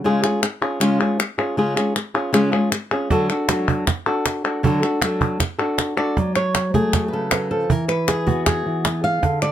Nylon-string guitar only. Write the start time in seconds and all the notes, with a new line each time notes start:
0.04 C#3 G#3 C#4 F4 G#4
0.23 C#4 F4 G#4
0.43 muted nylon-string guitar stroke
0.62 C#4 F4 G#4
0.80 C#3 G#3 C#4 F4 G#4
1.00 C#4 F4 G#4
1.19 muted nylon-string guitar stroke
1.38 C#4 F4 G#4
1.57 C#3 G#3 C#4 F4 G#4
1.76 C#4 F4 G#4
1.96 muted nylon-string guitar stroke
2.14 C#4 F4 G#4
2.33 C#3 G#3 C#4 F4 G#4
2.52 C#4 F4 G#4
2.72 muted nylon-string guitar stroke
2.91 C#4 F4 G#4
3.10 D3 F#3 D4 F#4 A4
3.30 D4 F#4 A4
3.49 F#3 D4 F#4 A4
3.87 muted nylon-string guitar stroke
4.06 D4 F#4 A4
4.44 D4 F#4 A4
4.63 D3 F#3 D4 F#4 A4
4.82 D4 F#4 A4
5.02 F#3 D4 F#4 A4
5.40 muted nylon-string guitar stroke
5.59 D4 F#4 A4
5.97 D4 F#4 A4 D5
6.17 F#3
6.36 C#5
6.74 A3 G#4
6.94 F#4
7.08 B4
7.13 C#3 A4
7.31 F#3 B4
7.51 F3 A4
7.70 E3 A#4
7.88 B4
8.08 G#4
8.27 B3 F#4
8.47 G#4
8.66 E3
8.86 B3
9.04 F5
9.22 D3
9.42 D5